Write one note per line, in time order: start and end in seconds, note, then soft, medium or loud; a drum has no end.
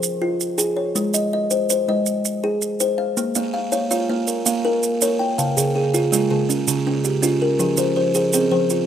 0.00 0.21 C5 medium
0.00 maracas medium
0.22 0.58 F4 medium
0.40 maracas medium
0.58 0.95 G#4 medium
0.58 maracas medium
0.77 1.14 C#5 medium
0.95 1.32 G#3 medium
0.95 maracas medium
1.14 1.32 D#5 medium
1.14 maracas medium
1.33 1.88 D#5 medium
1.51 1.69 C5 medium
1.51 maracas medium
1.70 2.25 C5 medium
1.70 maracas medium
1.89 2.25 G#3 medium
1.89 2.44 D#5 medium
2.06 maracas medium
2.25 maracas medium
2.44 2.80 G#4 medium
2.62 maracas medium
2.80 3.17 C5 medium
2.80 maracas medium
2.98 3.34 F5 medium
3.17 3.54 A#3 medium
3.17 maracas medium
3.35 3.73 A#3 medium
3.35 3.52 F5 medium
3.35 maracas medium
3.54 4.08 F5 medium
3.54 3.72 F5 medium
3.72 3.89 C#5 medium
3.72 3.90 F5 medium
3.72 maracas medium
3.91 4.28 F4 medium
3.91 4.46 C#5 medium
3.91 4.45 F5 medium
3.91 maracas medium
4.09 4.46 A#3 medium
4.09 4.65 F5 medium
4.27 4.83 A#4 medium
4.27 maracas medium
4.46 4.83 A#3 medium
4.46 5.01 F5 medium
4.46 maracas medium
4.65 5.01 A#4 medium
4.83 maracas medium
5.01 5.38 A#4 medium
5.01 5.39 C#5 medium
5.01 maracas medium
5.19 5.56 G5 medium
5.38 5.75 C#3 medium
5.38 5.75 F5 medium
5.38 maracas medium
5.57 5.94 C#3 medium
5.57 5.74 G#4 medium
5.57 maracas medium
5.75 6.29 G#4 medium
5.75 5.93 G#4 medium
5.94 6.12 F4 medium
5.94 6.11 G#4 medium
5.94 maracas medium
6.12 6.49 G#3 medium
6.12 6.68 F4 medium
6.12 6.66 G#4 medium
6.12 maracas medium
6.30 6.67 C#3 medium
6.30 6.86 G#4 medium
6.49 7.04 C#4 medium
6.49 maracas medium
6.68 7.04 C#3 medium
6.68 7.23 G#4 medium
6.68 maracas medium
6.87 7.23 C#4 medium
7.04 7.59 G4 medium
7.04 maracas medium
7.22 7.59 C#4 medium
7.22 7.60 F4 medium
7.22 maracas medium
7.42 7.78 A#4 medium
7.59 7.96 F3 medium
7.59 7.96 G#4 medium
7.59 maracas medium
7.77 8.15 F3 medium
7.77 7.95 C5 medium
7.77 maracas medium
7.96 8.50 C5 medium
7.96 8.14 C5 medium
8.14 8.32 G#4 medium
8.14 8.33 C5 medium
8.14 maracas medium
8.33 8.71 C4 medium
8.33 8.86 G#4 medium
8.33 8.86 C5 medium
8.33 maracas medium
8.52 8.86 F3 medium
8.52 8.86 C5 medium
8.70 8.86 F4 medium
8.70 maracas medium